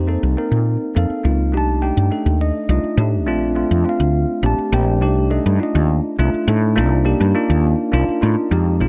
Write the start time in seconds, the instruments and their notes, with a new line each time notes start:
Already playing: fretless electric bass F2
0.07 tine electric piano A#3 C4 D#4 A4
0.23 fretless electric bass C2
0.37 tine electric piano A#3 C4 D#4 A#4
0.51 fretless electric bass A#2
0.95 fretless electric bass F2, tine electric piano A#3 C4 D#4 A4 F5
1.10 muted fretless electric bass stroke
1.24 fretless electric bass C#2, tine electric piano A#3 C4 D#4 F4
1.52 fretless electric bass C2, tine electric piano A3 D4 D#4 G4
1.57 tine electric piano A5
1.82 tine electric piano A3 D4 D#4 G4 G5
1.97 fretless electric bass G2
2.11 tine electric piano A3 D4 D#4 A4
2.26 fretless electric bass D#2
2.41 tine electric piano D#5
2.69 fretless electric bass C2, tine electric piano A3 D4 D#4 F4 D#5
2.83 muted fretless electric bass stroke
2.97 fretless electric bass A2, tine electric piano A3 D4 D#4 G4
3.27 fretless electric bass A#1, tine electric piano A3 C4 D4 F4
3.55 tine electric piano A3 C4 D4 F4
3.71 fretless electric bass F2
3.84 tine electric piano A3 C4 D4 F4
3.89 tine electric piano F5
4.00 fretless electric bass D2
4.43 fretless electric bass A#1, tine electric piano A3 C4 D4 G4 A5
4.58 muted fretless electric bass stroke
4.72 fretless electric bass A#1, tine electric piano A3 C4 D4 G4 G5
5.01 fretless electric bass C2, tine electric piano A3 D4 D#4 G4
5.30 tine electric piano A3 D4 D#4 A4 D#5
5.46 fretless electric bass G2
5.59 tine electric piano A3 D4 D#4 F4
5.63 tine electric piano D#5
5.75 fretless electric bass D#2
6.18 fretless electric bass C2, tine electric piano A3 D4 D#4 F4
6.34 muted fretless electric bass stroke
6.48 fretless electric bass A2, tine electric piano A3 D4 D#4 A4
6.76 fretless electric bass C2, tine electric piano A#3 D4 D#4 F4
7.05 tine electric piano A#3 D4 D#4 G4
7.20 fretless electric bass G2
7.35 tine electric piano A#3 D4 D#4 F4
7.50 fretless electric bass D#2
7.92 fretless electric bass C2, tine electric piano A#3 D4 D#4 F4
8.09 muted fretless electric bass stroke
8.21 fretless electric bass A2, tine electric piano A#3 D4 D#4 F4
8.51 fretless electric bass F2, tine electric piano G#3 C4 D#4 G4
8.80 fretless electric bass C2, tine electric piano G#3 C4 D#4 F4